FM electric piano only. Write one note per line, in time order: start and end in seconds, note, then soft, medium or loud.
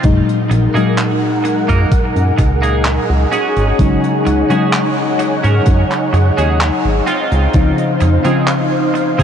0.03 0.69 A#2 medium
0.03 0.70 F#3 medium
0.03 0.70 G#3 medium
0.03 0.70 D#4 medium
0.74 3.29 A#2 medium
0.74 3.30 F#3 medium
0.74 3.30 G#3 medium
0.74 3.31 D#4 medium
3.79 4.44 C#3 medium
3.79 4.45 F#3 medium
3.79 4.45 G#3 medium
3.79 4.45 D#4 medium
4.49 7.04 C#3 medium
4.49 7.05 F#3 medium
4.49 7.05 G#3 medium
4.49 7.06 D#4 medium
7.54 8.19 C#3 medium
7.54 8.20 F3 medium
7.54 8.20 C4 medium
7.54 8.20 D#4 medium
8.24 9.23 C#3 medium
8.24 9.23 F3 medium
8.24 9.23 C4 medium
8.24 9.23 D#4 medium